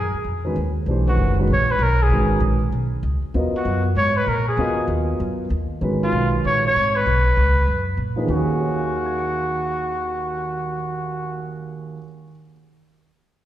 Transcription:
Already playing: upright bass F#2, trumpet G#4
0.14 muted upright bass stroke
0.24 upright bass F2
0.45 grand piano D#3 G#3 C#4 F#4 B4
0.56 upright bass D#2
0.86 upright bass B1, grand piano E3 A3 D4 G4
0.91 grand piano C5
1.07 grand piano D#3 G#3 C#4 F#4 B4, trumpet F#4
1.17 upright bass F#1
1.39 grand piano D#3 G#3 C#4 F#4 B4
1.47 upright bass A#1
1.53 trumpet C#5
1.71 trumpet B4
1.79 upright bass B1
1.83 trumpet A#4
2.03 trumpet G#4
2.09 upright bass G#1, grand piano D#3 G#3 C#4 F#4 B4
2.40 upright bass A#1
2.72 upright bass B1
3.03 upright bass C#2
3.22 muted upright bass stroke
3.34 upright bass D#2, grand piano F#3 B3 F4 A#4 D#5
3.53 trumpet F#4, muted upright bass stroke
3.65 upright bass F#2
3.95 upright bass G#2, trumpet C#5
4.17 trumpet B4
4.27 upright bass A#2, trumpet A#4
4.49 trumpet G#4
4.57 upright bass D#2, grand piano F#3 B3 F4 A#4 D#5
4.88 upright bass D#2
5.20 upright bass F#2
5.50 upright bass D#2
5.81 upright bass G#1, grand piano D#3 F#3 G#3 C#4 B4
6.04 trumpet F4
6.12 upright bass B1
6.44 upright bass A#1, trumpet C#5
6.67 trumpet C#5
6.75 upright bass G#1
6.96 trumpet B4
7.06 upright bass B1
7.37 upright bass C#2
7.67 upright bass F#2
7.97 upright bass A#2
8.16 grand piano F3 A#3 D#4 G#4 B4
8.25 grand piano D#2 D#3, upright bass D#2
8.29 grand piano F#3 C#4, trumpet F#4
8.33 grand piano F#4 G#4
8.61 grand piano C#5
8.68 grand piano F5
8.76 grand piano G#5
8.85 grand piano C#6
8.96 grand piano F6
9.06 grand piano G#6
9.18 grand piano C#7

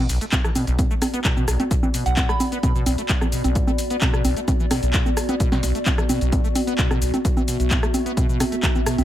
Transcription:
Already playing: ambient pad B3 F#4 D5
0.09 acid bass B1, open hi-hat, shaker
0.21 acid bass A3, closed hi-hat, shaker
0.32 acid bass B2, kick, clap, closed hi-hat, high conga, shaker
0.44 acid bass E3, cross-stick, shaker
0.55 acid bass B2, open hi-hat, high conga, shaker
0.67 acid bass B1, closed hi-hat, shaker
0.79 acid bass B2, kick, closed hi-hat, high conga, shaker
0.91 acid bass A3, shaker
1.02 cross-stick, open hi-hat, high conga, shaker
1.14 acid bass B3, closed hi-hat, shaker
1.25 acid bass B2, kick, clap, closed hi-hat, shaker
1.37 acid bass B2, high conga, shaker
1.48 acid bass B1, cross-stick, open hi-hat, shaker
1.60 acid bass A3, closed hi-hat, high conga, shaker
1.71 acid bass B2, kick, closed hi-hat, shaker
1.83 acid bass E3, high conga, shaker
1.94 acid bass B2, open hi-hat, shaker
2.06 acid bass B1, synth bell F#5, closed hi-hat, shaker
2.17 acid bass B2, synth bell F#5, kick, clap, closed hi-hat, high conga, shaker
2.29 acid bass A3, synth bell B5, cross-stick, shaker
2.40 open hi-hat, high conga, shaker
2.52 acid bass B3, closed hi-hat, shaker
2.63 acid bass B2, kick, closed hi-hat, high conga, shaker
2.75 acid bass B2, shaker
2.86 acid bass B1, open hi-hat, high conga, shaker
2.98 acid bass A3, closed hi-hat, shaker
3.09 acid bass B2, kick, clap, closed hi-hat, shaker
3.21 acid bass E3, cross-stick, high conga, shaker
3.32 acid bass B2, open hi-hat, shaker
3.44 acid bass B1, closed hi-hat, high conga, shaker
3.55 acid bass B2, kick, closed hi-hat, shaker
3.67 acid bass A3, high conga, shaker
3.78 open hi-hat, shaker
3.90 acid bass B3, closed hi-hat, shaker
4.01 acid bass B2, kick, clap, closed hi-hat, high conga, shaker
4.14 acid bass B2, cross-stick, shaker
4.25 acid bass B1, open hi-hat, high conga, shaker
4.37 acid bass A3, closed hi-hat, shaker
4.48 acid bass B2, kick, closed hi-hat, high conga, shaker
4.60 acid bass E3, shaker
4.71 acid bass B2, cross-stick, open hi-hat, high conga, shaker
4.83 acid bass B1, closed hi-hat, shaker
4.94 acid bass B2, kick, clap, closed hi-hat, shaker
5.06 acid bass A3, high conga, shaker
5.17 cross-stick, open hi-hat, shaker
5.29 acid bass B3, closed hi-hat, high conga, shaker
5.40 acid bass B2, kick, closed hi-hat, shaker
5.52 acid bass B2, snare, high conga, shaker
5.63 acid bass B1, snare, open hi-hat, shaker
5.75 acid bass A3, closed hi-hat, shaker
5.86 acid bass B2, kick, clap, closed hi-hat, high conga, shaker
5.98 acid bass E3, cross-stick, shaker
6.09 acid bass B2, open hi-hat, high conga, shaker
6.21 acid bass B1, closed hi-hat, shaker
6.32 acid bass B2, kick, closed hi-hat, high conga, shaker
6.44 acid bass A3, shaker
6.55 open hi-hat, high conga, shaker
6.67 acid bass B3, closed hi-hat, shaker
6.78 acid bass B2, kick, clap, closed hi-hat, shaker
6.90 acid bass B2, cross-stick, high conga, shaker
7.02 acid bass B1, open hi-hat, shaker
7.14 acid bass A3, closed hi-hat, high conga, shaker
7.25 acid bass B2, ambient pad E5, kick, closed hi-hat, shaker
7.37 acid bass E3, high conga, shaker
7.48 acid bass B2, open hi-hat, shaker
7.60 acid bass B1, closed hi-hat, shaker
7.71 acid bass B2, kick, clap, closed hi-hat, high conga, shaker
7.83 acid bass A3, cross-stick, shaker
7.94 open hi-hat, high conga, shaker
8.06 acid bass B3, closed hi-hat, shaker
8.17 acid bass B2, kick, closed hi-hat, high conga, shaker
8.29 acid bass B2, shaker
8.40 acid bass B2, cross-stick, open hi-hat, high conga, shaker
8.52 acid bass A3, closed hi-hat, shaker
8.63 acid bass B2, kick, clap, closed hi-hat, shaker
8.75 acid bass E3, high conga, shaker
8.86 acid bass B2, cross-stick, open hi-hat, shaker
8.98 acid bass B1, closed hi-hat, high conga, shaker

